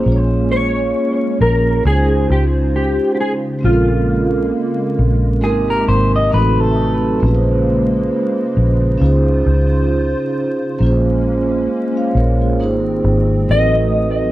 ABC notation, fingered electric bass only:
X:1
M:4/4
L:1/16
Q:"Swing 16ths" 1/4=67
K:Bbdor
V:1 name="Fingered electric bass" clef=bass
B,,,4 z2 B,,,2 D,,2 D,,3 z3 | B,,,4 z2 B,,,2 A,,,2 A,,,2 =A,,,4 | B,,,4 z2 B,,,2 D,,2 D,,3 z3 | B,,,4 z2 B,,,2 A,,,2 A,,,2 =A,,,4 |]